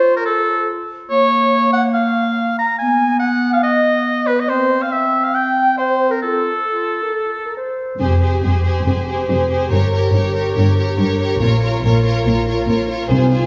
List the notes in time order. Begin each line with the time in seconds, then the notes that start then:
Already playing: F4 C5
0.16 A#4
0.26 A4
1.10 A#3 C#5
1.73 F#5
1.94 F5
2.58 A#5
2.79 B3 G#5
3.20 F#5
3.53 F5
3.63 D#5
4.27 B4
4.38 D#5
4.48 C4 C5
4.81 F5
4.91 E5
5.23 F5
5.33 G5
5.78 C5
6.09 A#4
6.21 F4 A4
6.69 F4
7.02 A#4
7.13 A4
7.46 A#4
7.57 C5
8.00 F1 F2 G4 G#4 C5
8.21 G4 G#4 C5
8.42 F1 F2 G4 G#4 C5
8.64 G4 G#4 C5
8.85 F1 F2 G4 G#4 C5
9.07 G4 G#4 C5
9.29 F1 F2 G4 G#4 C5
9.51 G4 G#4 C5
9.71 G1 G2 G4 A#4 C#5
9.93 G4 A#4 C#5
10.13 G1 G2 G4 A#4 C#5
10.35 G4 A#4 C#5
10.55 G1 G2 G4 A#4 C#5
10.78 G4 A#4 C#5
10.99 G1 G2 G4 A#4 C#5
11.20 G4 A#4 C#5
11.41 A#1 A#2 F4 A#4 C#5
11.63 F4 A#4 C#5
11.83 A#1 A#2 F4 A#4 C#5
12.05 F4 A#4 C#5
12.26 A#1 A#2 F4 A#4 C#5
12.48 F4 A#4 C#5
12.68 A#1 A#2 F4 A#4 C#5
12.88 F4 A#4 C#5
13.09 C2 C3 F4 G#4 C5
13.30 F4 G#4 C5